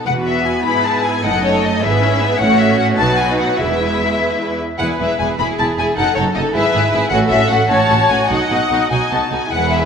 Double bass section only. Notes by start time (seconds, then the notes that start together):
0.06 E1
1.25 F#1
1.83 G#1
2.40 A1
2.98 B1
3.58 E1
4.81 E1
5.00 E1
5.21 E1
5.40 E1
5.60 E1
5.78 E1
5.99 F#1
6.17 F#1
6.36 F#1
6.55 G#1
6.74 G#1
6.92 G#1
7.12 A1
7.30 A1
7.50 A1
7.69 A1
7.90 A1
8.09 A1
8.30 B1
8.50 B1
8.71 B1
8.91 B1
9.12 B1
9.32 B1
9.52 E1